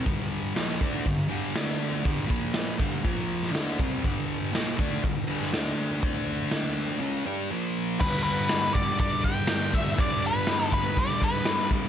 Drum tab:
CC |----------------|----------------|----------------|----------------|
HH |o---o---o---o---|o---o---o---o---|o---o---o---o---|o---o-----------|
SD |----o-------o---|----o------oo---|----o------oo---|----o-----------|
BD |o-----o-o-------|o-o---o-o-----o-|o-----o-o-------|o---------------|

CC |x---------------|----------------|
HH |----o---o---o---|o---o---o---o---|
SD |----o-------o---|----o----o-oo---|
BD |o-----o-o-o---o-|o-----o-o-o---o-|